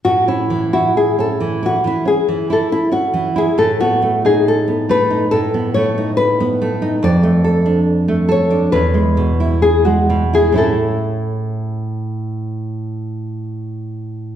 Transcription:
X:1
M:4/4
L:1/16
Q:1/4=68
K:A
V:1 name="Nylon-string guitar"
F E2 F G A2 F E G2 A E F2 G | A F2 G A2 B2 A2 c2 B4 | d6 c2 B4 G F2 G | A12 z4 |]
V:2 name="Nylon-string guitar"
A,, C E, E2 C E, E E, C E, E2 C E, E | A,, B, A, ^D2 B, A, D A,, B, A, D2 B, A, D | =F,, A, A D2 A, A D E,, G, B,, E2 G, B,, E | [A,,CE]16 |]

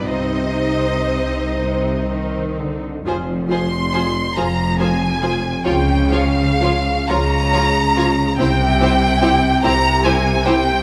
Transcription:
X:1
M:6/8
L:1/16
Q:3/8=46
K:Cm
V:1 name="Violin section"
c8- c2 z2 | [K:Fm] z2 c'4 b2 a4 | g2 f4 b6 | g6 b2 a2 g2 |]
V:2 name="Violin section"
e8- e z3 | [K:Fm] [Ac]2 [Ac]2 [Ac]2 [Ac]2 [Ac]2 [Ac]2 | [Fd]2 [Fd]2 [Fd]2 [Fd]2 [Fd]2 [Fd]2 | [Gc]2 [Gc]2 [Gc]2 [Gc]2 [Gc]2 [Gc]2 |]
V:3 name="Viola section"
[CE]8- [CE]3 z | [K:Fm] [F,F]2 [F,F]2 [F,F]2 [F,F]2 [F,F]2 [F,F]2 | [F,F]2 [F,F]2 [F,F]2 [F,F]2 [F,F]2 [F,F]2 | [C=E]2 [CE]2 [CE]2 [CE]2 [CE]2 [CE]2 |]
V:4 name="Cello section" clef=bass
C,6 C,2 E,2 D,2 | [K:Fm] F,,6 F,,6 | D,6 D,6 | C,6 C,6 |]
V:5 name="Double bass section" clef=bass
C,,8- C,,3 z | [K:Fm] F,,,6 F,,,6 | D,,6 D,,6 | C,,6 C,,6 |]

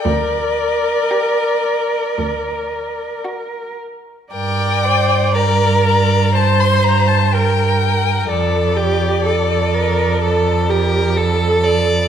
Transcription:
X:1
M:4/4
L:1/16
Q:1/4=60
K:Gm
V:1 name="Violin"
d12 z4 | g4 b4 a c' b a g4 | d12- d2 z2 |]
V:2 name="Violin"
z4 G4 z4 ^F4 | B2 c2 d2 d2 c4 B2 B2 | A2 G2 A4 A2 B2 A2 d2 |]
V:3 name="Viola"
B12- B2 z2 | d4 B4 c4 B4 | A2 G2 A2 B2 A2 G2 A4 |]
V:4 name="Cello" clef=bass
D,,4 z4 D,,4 z4 | G,,16 | F,,16 |]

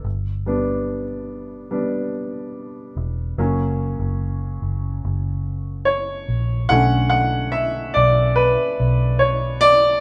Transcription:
X:1
M:4/4
L:1/16
Q:1/4=72
K:F#phr
V:1 name="Grand piano"
z16 | z12 c4 | f2 f2 e2 d2 B4 c2 d2 |]
V:2 name="Grand piano"
z2 [G,B,D]2 z4 [G,B,D]2 z6 | [F,^A,C]16 | [D,A,C]6 z8 z2 |]
V:3 name="Fingered electric bass" clef=bass
G,,,12- G,,,2 E,,,2 | F,,,3 F,,,3 F,,,2 F,,,6 ^A,,,2 | B,,,6 B,,,3 z B,,,6 |]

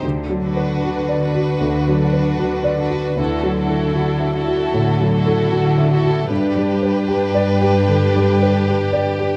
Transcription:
X:1
M:4/4
L:1/8
Q:1/4=77
K:G
V:1 name="Violin section"
z B2 B2 B2 B | A A2 A2 A2 A | B8 |]
V:2 name="Harp"
(3D, D F (3B d B (3D, D F (3B d B | (3D, E F (3A e A (3A, E F (3A e A | (3G,, D G (3B d B (3D, D G (3B d B |]
V:3 name="Grand piano"
(3D,, F, B (3F d F (3D,, F, B (3F d F | (3D,, F, A (3F e F (3A,, F, A (3F e F | (3G,, G, B (3G d G (3D, G, B (3G d G |]
V:4 name="Violin section"
z F2 F2 F2 F | F F2 F2 F2 F | G8 |]
V:5 name="Viola section"
z D2 D2 D2 D | E E2 E2 E2 E | D8 |]
V:6 name="Cello section" clef=bass
D,2 D,2 D,2 D,2 | D,2 D,2 D,2 D,2 | G,,8 |]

